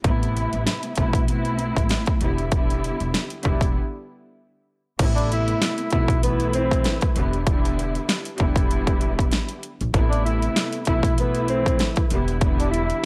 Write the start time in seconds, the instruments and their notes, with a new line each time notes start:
0.04 upright bass A1, string section C3 A3 B3 E4, kick, closed hi-hat
0.23 closed hi-hat
0.37 closed hi-hat
0.53 upright bass A1, closed hi-hat
0.67 snare, closed hi-hat
0.83 closed hi-hat
0.95 upright bass B1, string section C3 A3 B3 E4, kick, closed hi-hat
1.13 kick, closed hi-hat
1.28 string section A3 B3 C4 E4, closed hi-hat
1.45 closed hi-hat
1.59 closed hi-hat
1.76 upright bass A1, kick, closed hi-hat
1.89 snare, closed hi-hat
2.06 kick, closed hi-hat
2.21 upright bass E1, string section D3 G3 B3 E4, closed hi-hat
2.38 closed hi-hat
2.52 string section D3 G3 B3 E4, kick, closed hi-hat
2.70 closed hi-hat
2.84 closed hi-hat
3.00 upright bass E1, closed hi-hat
3.14 snare, closed hi-hat
3.30 closed hi-hat
3.43 upright bass E1, string section D3 G3 B3 E4, kick, closed hi-hat
3.61 kick, closed hi-hat
4.99 upright bass A1, string section C3 A3 B3 E4, kick, closed hi-hat, crash
5.15 tenor saxophone D4, closed hi-hat
5.32 tenor saxophone E4, closed hi-hat
5.48 closed hi-hat
5.62 snare, closed hi-hat
5.78 closed hi-hat
5.90 upright bass B1, string section C3 A3 B3 E4, tenor saxophone E4, kick, closed hi-hat
6.08 kick, closed hi-hat
6.23 string section E3 A3 E4 B4, tenor saxophone B3, closed hi-hat
6.40 closed hi-hat
6.53 tenor saxophone C4, closed hi-hat
6.71 kick, closed hi-hat
6.84 snare, closed hi-hat
7.01 kick, closed hi-hat
7.16 upright bass E1, string section D3 G3 B3 E4, closed hi-hat
7.33 closed hi-hat
7.47 string section D3 G3 B3 E4, kick, closed hi-hat
7.65 closed hi-hat
7.79 closed hi-hat
7.95 closed hi-hat
8.09 snare, closed hi-hat
8.25 closed hi-hat
8.38 upright bass E1, string section D3 G3 B3 E4, kick, closed hi-hat
8.56 kick, closed hi-hat
8.71 closed hi-hat
8.87 kick, closed hi-hat
9.01 closed hi-hat
9.19 kick, closed hi-hat
9.32 snare, closed hi-hat
9.49 closed hi-hat
9.63 closed hi-hat
9.81 upright bass A#1, closed hi-hat
9.94 upright bass A1, string section C3 A3 B3 E4, kick, closed hi-hat
10.10 tenor saxophone D4, closed hi-hat
10.25 tenor saxophone E4, closed hi-hat
10.42 closed hi-hat
10.56 snare, closed hi-hat
10.73 closed hi-hat
10.85 upright bass B1, string section C3 A3 B3 E4, tenor saxophone E4, kick, closed hi-hat
11.03 kick, closed hi-hat
11.17 string section E3 A3 E4 B4, tenor saxophone B3, closed hi-hat
11.35 closed hi-hat
11.48 tenor saxophone C4, closed hi-hat
11.66 kick, closed hi-hat
11.79 snare, closed hi-hat
11.96 kick, closed hi-hat
12.10 upright bass E1, string section D3 G3 B3 E4, closed hi-hat
12.28 closed hi-hat
12.41 string section D3 G3 B3, kick, closed hi-hat
12.45 string section E4
12.60 tenor saxophone D4, closed hi-hat
12.71 tenor saxophone E4, closed hi-hat
12.90 closed hi-hat